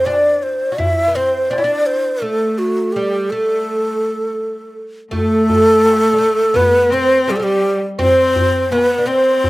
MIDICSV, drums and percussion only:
0, 0, Header, 1, 2, 480
1, 0, Start_track
1, 0, Tempo, 720288
1, 1488, Time_signature, 4, 2, 24, 8
1, 6329, End_track
2, 0, Start_track
2, 0, Title_t, "Darbuka"
2, 49, Note_on_c, 9, 63, 64
2, 116, Note_off_c, 9, 63, 0
2, 297, Note_on_c, 9, 62, 25
2, 364, Note_off_c, 9, 62, 0
2, 417, Note_on_c, 9, 62, 24
2, 484, Note_off_c, 9, 62, 0
2, 530, Note_on_c, 9, 64, 84
2, 596, Note_off_c, 9, 64, 0
2, 657, Note_on_c, 9, 62, 22
2, 723, Note_off_c, 9, 62, 0
2, 774, Note_on_c, 9, 62, 22
2, 841, Note_off_c, 9, 62, 0
2, 1019, Note_on_c, 9, 63, 66
2, 1086, Note_off_c, 9, 63, 0
2, 3417, Note_on_c, 9, 64, 70
2, 3483, Note_off_c, 9, 64, 0
2, 3663, Note_on_c, 9, 64, 78
2, 3729, Note_off_c, 9, 64, 0
2, 3905, Note_on_c, 9, 63, 68
2, 3972, Note_off_c, 9, 63, 0
2, 4143, Note_on_c, 9, 62, 28
2, 4210, Note_off_c, 9, 62, 0
2, 4260, Note_on_c, 9, 62, 26
2, 4326, Note_off_c, 9, 62, 0
2, 4373, Note_on_c, 9, 64, 83
2, 4440, Note_off_c, 9, 64, 0
2, 4610, Note_on_c, 9, 62, 28
2, 4677, Note_off_c, 9, 62, 0
2, 4852, Note_on_c, 9, 63, 75
2, 4919, Note_off_c, 9, 63, 0
2, 5327, Note_on_c, 9, 64, 78
2, 5394, Note_off_c, 9, 64, 0
2, 5571, Note_on_c, 9, 64, 86
2, 5638, Note_off_c, 9, 64, 0
2, 5810, Note_on_c, 9, 63, 72
2, 5877, Note_off_c, 9, 63, 0
2, 6172, Note_on_c, 9, 62, 25
2, 6238, Note_off_c, 9, 62, 0
2, 6291, Note_on_c, 9, 64, 90
2, 6329, Note_off_c, 9, 64, 0
2, 6329, End_track
0, 0, End_of_file